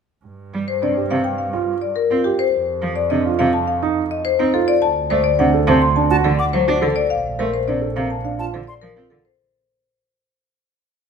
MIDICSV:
0, 0, Header, 1, 6, 480
1, 0, Start_track
1, 0, Key_signature, -2, "minor"
1, 0, Tempo, 571429
1, 213, Time_signature, 4, 2, 24, 8
1, 9321, End_track
2, 0, Start_track
2, 0, Title_t, "Flute"
2, 0, Program_c, 0, 73
2, 5125, Note_on_c, 0, 81, 91
2, 5175, Note_off_c, 0, 81, 0
2, 5368, Note_on_c, 0, 86, 66
2, 5419, Note_off_c, 0, 86, 0
2, 7049, Note_on_c, 0, 81, 72
2, 7100, Note_off_c, 0, 81, 0
2, 7291, Note_on_c, 0, 84, 61
2, 7342, Note_off_c, 0, 84, 0
2, 9321, End_track
3, 0, Start_track
3, 0, Title_t, "Marimba"
3, 0, Program_c, 1, 12
3, 570, Note_on_c, 1, 72, 60
3, 696, Note_on_c, 1, 74, 56
3, 728, Note_off_c, 1, 72, 0
3, 850, Note_off_c, 1, 74, 0
3, 930, Note_on_c, 1, 77, 59
3, 1043, Note_on_c, 1, 79, 59
3, 1088, Note_off_c, 1, 77, 0
3, 1162, Note_on_c, 1, 77, 48
3, 1205, Note_off_c, 1, 79, 0
3, 1325, Note_off_c, 1, 77, 0
3, 1525, Note_on_c, 1, 74, 54
3, 1644, Note_on_c, 1, 70, 74
3, 1686, Note_off_c, 1, 74, 0
3, 1806, Note_off_c, 1, 70, 0
3, 1884, Note_on_c, 1, 67, 59
3, 2008, Note_on_c, 1, 72, 78
3, 2046, Note_off_c, 1, 67, 0
3, 2167, Note_off_c, 1, 72, 0
3, 2483, Note_on_c, 1, 74, 71
3, 2605, Note_on_c, 1, 75, 66
3, 2645, Note_off_c, 1, 74, 0
3, 2766, Note_off_c, 1, 75, 0
3, 2847, Note_on_c, 1, 77, 81
3, 2966, Note_on_c, 1, 81, 69
3, 3007, Note_off_c, 1, 77, 0
3, 3089, Note_on_c, 1, 77, 62
3, 3126, Note_off_c, 1, 81, 0
3, 3247, Note_off_c, 1, 77, 0
3, 3452, Note_on_c, 1, 75, 75
3, 3568, Note_on_c, 1, 72, 80
3, 3608, Note_off_c, 1, 75, 0
3, 3727, Note_off_c, 1, 72, 0
3, 3812, Note_on_c, 1, 69, 71
3, 3930, Note_on_c, 1, 74, 87
3, 3968, Note_off_c, 1, 69, 0
3, 4047, Note_on_c, 1, 81, 87
3, 4088, Note_off_c, 1, 74, 0
3, 4207, Note_off_c, 1, 81, 0
3, 4287, Note_on_c, 1, 72, 74
3, 4401, Note_on_c, 1, 74, 82
3, 4447, Note_off_c, 1, 72, 0
3, 4527, Note_on_c, 1, 78, 67
3, 4565, Note_off_c, 1, 74, 0
3, 4687, Note_off_c, 1, 78, 0
3, 4766, Note_on_c, 1, 81, 82
3, 4887, Note_on_c, 1, 84, 76
3, 4926, Note_off_c, 1, 81, 0
3, 5005, Note_on_c, 1, 81, 71
3, 5047, Note_off_c, 1, 84, 0
3, 5166, Note_off_c, 1, 81, 0
3, 5246, Note_on_c, 1, 69, 61
3, 5365, Note_on_c, 1, 78, 65
3, 5406, Note_off_c, 1, 69, 0
3, 5488, Note_on_c, 1, 72, 74
3, 5526, Note_off_c, 1, 78, 0
3, 5647, Note_off_c, 1, 72, 0
3, 5731, Note_on_c, 1, 69, 65
3, 5844, Note_on_c, 1, 74, 74
3, 5888, Note_off_c, 1, 69, 0
3, 5967, Note_on_c, 1, 77, 71
3, 6006, Note_off_c, 1, 74, 0
3, 6127, Note_off_c, 1, 77, 0
3, 6208, Note_on_c, 1, 70, 56
3, 6330, Note_on_c, 1, 72, 68
3, 6367, Note_off_c, 1, 70, 0
3, 6449, Note_on_c, 1, 74, 60
3, 6488, Note_off_c, 1, 72, 0
3, 6607, Note_off_c, 1, 74, 0
3, 6692, Note_on_c, 1, 77, 68
3, 6807, Note_on_c, 1, 81, 60
3, 6849, Note_off_c, 1, 77, 0
3, 6928, Note_on_c, 1, 77, 56
3, 6967, Note_off_c, 1, 81, 0
3, 7087, Note_off_c, 1, 77, 0
3, 7173, Note_on_c, 1, 69, 51
3, 7286, Note_on_c, 1, 74, 56
3, 7329, Note_off_c, 1, 69, 0
3, 7405, Note_on_c, 1, 70, 73
3, 7447, Note_off_c, 1, 74, 0
3, 7566, Note_off_c, 1, 70, 0
3, 7646, Note_on_c, 1, 69, 59
3, 7770, Note_on_c, 1, 72, 70
3, 7806, Note_off_c, 1, 69, 0
3, 7928, Note_off_c, 1, 72, 0
3, 9321, End_track
4, 0, Start_track
4, 0, Title_t, "Grand piano"
4, 0, Program_c, 2, 0
4, 692, Note_on_c, 2, 62, 50
4, 812, Note_on_c, 2, 67, 51
4, 848, Note_off_c, 2, 62, 0
4, 968, Note_off_c, 2, 67, 0
4, 1288, Note_on_c, 2, 65, 69
4, 1447, Note_off_c, 2, 65, 0
4, 1771, Note_on_c, 2, 65, 54
4, 1892, Note_on_c, 2, 67, 60
4, 1928, Note_off_c, 2, 65, 0
4, 2048, Note_off_c, 2, 67, 0
4, 2611, Note_on_c, 2, 62, 58
4, 2733, Note_on_c, 2, 65, 66
4, 2768, Note_off_c, 2, 62, 0
4, 2889, Note_off_c, 2, 65, 0
4, 3213, Note_on_c, 2, 63, 84
4, 3369, Note_off_c, 2, 63, 0
4, 3689, Note_on_c, 2, 63, 73
4, 3811, Note_on_c, 2, 65, 76
4, 3847, Note_off_c, 2, 63, 0
4, 3968, Note_off_c, 2, 65, 0
4, 4292, Note_on_c, 2, 74, 70
4, 4448, Note_off_c, 2, 74, 0
4, 4532, Note_on_c, 2, 62, 68
4, 4652, Note_on_c, 2, 69, 75
4, 4688, Note_off_c, 2, 62, 0
4, 4772, Note_on_c, 2, 72, 79
4, 4808, Note_off_c, 2, 69, 0
4, 4929, Note_off_c, 2, 72, 0
4, 5010, Note_on_c, 2, 62, 68
4, 5132, Note_on_c, 2, 66, 85
4, 5168, Note_off_c, 2, 62, 0
4, 5247, Note_on_c, 2, 74, 63
4, 5288, Note_off_c, 2, 66, 0
4, 5406, Note_off_c, 2, 74, 0
4, 5607, Note_on_c, 2, 66, 64
4, 5728, Note_on_c, 2, 69, 66
4, 5767, Note_off_c, 2, 66, 0
4, 5887, Note_off_c, 2, 69, 0
4, 6206, Note_on_c, 2, 72, 60
4, 6366, Note_off_c, 2, 72, 0
4, 6446, Note_on_c, 2, 62, 51
4, 6565, Note_on_c, 2, 69, 57
4, 6607, Note_off_c, 2, 62, 0
4, 6687, Note_on_c, 2, 70, 62
4, 6726, Note_off_c, 2, 69, 0
4, 6847, Note_off_c, 2, 70, 0
4, 6926, Note_on_c, 2, 62, 55
4, 7046, Note_on_c, 2, 65, 68
4, 7086, Note_off_c, 2, 62, 0
4, 7167, Note_on_c, 2, 72, 54
4, 7207, Note_off_c, 2, 65, 0
4, 7327, Note_off_c, 2, 72, 0
4, 7530, Note_on_c, 2, 65, 59
4, 7649, Note_on_c, 2, 69, 56
4, 7688, Note_off_c, 2, 65, 0
4, 7807, Note_off_c, 2, 69, 0
4, 9321, End_track
5, 0, Start_track
5, 0, Title_t, "Cello"
5, 0, Program_c, 3, 42
5, 453, Note_on_c, 3, 55, 50
5, 543, Note_off_c, 3, 55, 0
5, 692, Note_on_c, 3, 48, 48
5, 782, Note_off_c, 3, 48, 0
5, 931, Note_on_c, 3, 48, 73
5, 1022, Note_off_c, 3, 48, 0
5, 1771, Note_on_c, 3, 60, 61
5, 1862, Note_off_c, 3, 60, 0
5, 2370, Note_on_c, 3, 53, 62
5, 2461, Note_off_c, 3, 53, 0
5, 2611, Note_on_c, 3, 48, 59
5, 2702, Note_off_c, 3, 48, 0
5, 2850, Note_on_c, 3, 48, 85
5, 2941, Note_off_c, 3, 48, 0
5, 3693, Note_on_c, 3, 60, 69
5, 3783, Note_off_c, 3, 60, 0
5, 4288, Note_on_c, 3, 57, 64
5, 4379, Note_off_c, 3, 57, 0
5, 4529, Note_on_c, 3, 48, 72
5, 4620, Note_off_c, 3, 48, 0
5, 4767, Note_on_c, 3, 48, 90
5, 4859, Note_off_c, 3, 48, 0
5, 5244, Note_on_c, 3, 50, 70
5, 5337, Note_off_c, 3, 50, 0
5, 5489, Note_on_c, 3, 54, 78
5, 5580, Note_off_c, 3, 54, 0
5, 5611, Note_on_c, 3, 62, 66
5, 5702, Note_off_c, 3, 62, 0
5, 5730, Note_on_c, 3, 50, 63
5, 5821, Note_off_c, 3, 50, 0
5, 6212, Note_on_c, 3, 57, 58
5, 6302, Note_off_c, 3, 57, 0
5, 6454, Note_on_c, 3, 48, 60
5, 6544, Note_off_c, 3, 48, 0
5, 6691, Note_on_c, 3, 48, 77
5, 6782, Note_off_c, 3, 48, 0
5, 7174, Note_on_c, 3, 50, 54
5, 7263, Note_off_c, 3, 50, 0
5, 7412, Note_on_c, 3, 53, 72
5, 7502, Note_off_c, 3, 53, 0
5, 7532, Note_on_c, 3, 60, 56
5, 7622, Note_off_c, 3, 60, 0
5, 7651, Note_on_c, 3, 50, 61
5, 7742, Note_off_c, 3, 50, 0
5, 9321, End_track
6, 0, Start_track
6, 0, Title_t, "Double bass"
6, 0, Program_c, 4, 43
6, 210, Note_on_c, 4, 43, 54
6, 2002, Note_off_c, 4, 43, 0
6, 2128, Note_on_c, 4, 41, 60
6, 3921, Note_off_c, 4, 41, 0
6, 4049, Note_on_c, 4, 38, 69
6, 5841, Note_off_c, 4, 38, 0
6, 5970, Note_on_c, 4, 34, 54
6, 7762, Note_off_c, 4, 34, 0
6, 9321, End_track
0, 0, End_of_file